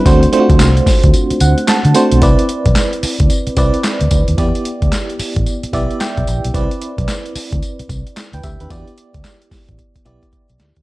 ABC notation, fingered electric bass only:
X:1
M:4/4
L:1/16
Q:"Swing 16ths" 1/4=111
K:Clyd
V:1 name="Fingered electric bass" clef=bass
D,,2 z D,, C,,2 z D,, z2 D,, z2 D, z B,,, | C,, z2 B,,, z3 D,, z2 C,, z2 D,, D,, ^D,, | E,, z2 D,, z3 A,,, z2 B,,, z2 B,,, ^A,,, B,,, | C,, z2 B,,, z3 D,, z2 C,, z2 D,, D,, ^D,, |
E,, z2 D,, z3 A,,, z2 B,,, z2 B,,, D,, ^D,, |]